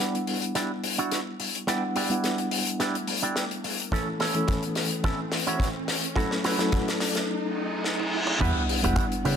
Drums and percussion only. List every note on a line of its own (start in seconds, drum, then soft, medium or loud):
0.15 closed hi-hat soft
0.27 open hi-hat loud
0.42 closed hi-hat medium
0.55 snare medium
0.55 closed hi-hat medium
0.84 open hi-hat loud
0.99 closed hi-hat medium
1.12 snare medium
1.12 closed hi-hat medium
1.40 open hi-hat loud
1.55 closed hi-hat medium
1.67 snare medium
1.67 closed hi-hat medium
1.96 open hi-hat loud
2.10 closed hi-hat medium
2.24 snare medium
2.24 closed hi-hat medium
2.38 closed hi-hat medium
2.51 open hi-hat loud
2.67 closed hi-hat medium
2.80 snare medium
2.80 closed hi-hat medium
2.95 closed hi-hat medium
3.08 open hi-hat loud
3.23 closed hi-hat medium
3.36 snare medium
3.36 closed hi-hat medium
3.51 closed hi-hat medium
3.64 open hi-hat loud
3.80 closed hi-hat medium
3.92 kick loud
3.92 snare medium
3.92 closed hi-hat medium
4.20 snare medium
4.20 open hi-hat loud
4.34 closed hi-hat medium
4.48 kick loud
4.48 snare medium
4.48 closed hi-hat medium
4.63 closed hi-hat soft
4.75 snare medium
4.75 open hi-hat loud
4.91 closed hi-hat medium
5.04 kick loud
5.04 snare medium
5.04 closed hi-hat medium
5.32 snare medium
5.32 open hi-hat loud
5.47 closed hi-hat medium
5.60 kick loud
5.60 snare medium
5.60 closed hi-hat medium
5.88 snare medium
5.88 open hi-hat loud
6.04 closed hi-hat medium
6.16 kick loud
6.16 snare medium
6.16 closed hi-hat medium
6.31 snare medium
6.44 snare medium
6.44 open hi-hat loud
6.59 snare medium
6.59 closed hi-hat medium
6.72 kick loud
6.72 snare loud
6.72 closed hi-hat medium
6.88 snare medium
6.88 closed hi-hat medium
7.00 snare medium
7.00 open hi-hat loud
7.15 snare medium
7.15 closed hi-hat medium
7.84 snare medium
8.00 high tom medium
8.27 mid tom medium
8.41 kick loud
8.41 closed hi-hat medium
8.41 crash loud
8.69 open hi-hat loud
8.84 closed hi-hat medium
8.96 kick loud
8.96 clap loud
8.96 closed hi-hat medium
9.12 closed hi-hat medium
9.25 open hi-hat loud